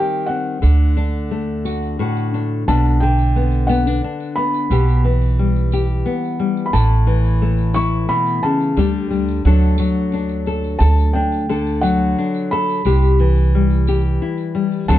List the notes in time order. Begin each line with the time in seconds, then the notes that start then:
Already playing: D#3 G3 C4 G4 G5
0.27 C4 F#5
0.62 D2 D3, tambourine
0.97 D4
1.31 A3
1.65 F#4, tambourine
1.83 tambourine
1.99 A2 F#4
2.17 tambourine
2.34 D4, tambourine
2.68 B1 B2 D4 A5, tambourine
2.86 tambourine
3.00 D3 G5
3.19 tambourine
3.36 B3
3.52 tambourine
3.67 B3 F#5, tambourine
3.87 D4
4.04 D4
4.20 tambourine
4.36 B3 B5
4.54 tambourine
4.70 B1 B2 G4, tambourine
4.89 tambourine
5.04 E3
5.22 tambourine
5.39 G3
5.56 tambourine
5.72 G4, tambourine
6.06 B3
6.24 tambourine
6.39 G3
6.57 tambourine
6.66 B5
6.73 A1 A2 E4 A5, tambourine
6.91 tambourine
7.07 E3
7.25 tambourine
7.42 A3
7.58 tambourine
7.74 E4 C#6, tambourine
8.09 B2 B5
8.26 tambourine
8.43 C#3 A5
8.60 tambourine
8.77 D2 D3 G3 D4 G4, tambourine
9.10 G3, tambourine
9.29 tambourine
9.45 D2 D3 F#3 D4 A4, tambourine
9.78 F#3, tambourine
10.12 D4, tambourine
10.29 tambourine
10.46 A4, tambourine
10.64 tambourine
10.79 D2 A4 A5, tambourine
10.98 tambourine
11.13 D4 G5
11.32 tambourine
11.49 D3 A4
11.67 tambourine
11.81 F#3 F#5, tambourine
12.18 D4
12.34 tambourine
12.51 A4 B5
12.69 tambourine
12.85 C2 C3 G4, tambourine
13.02 tambourine
13.20 E3
13.36 tambourine
13.55 G3
13.70 tambourine
13.87 G4, tambourine
14.22 E4
14.38 tambourine
14.55 G3
14.72 tambourine
14.88 D2 D3 F#3 C4 D4 A4 A5, tambourine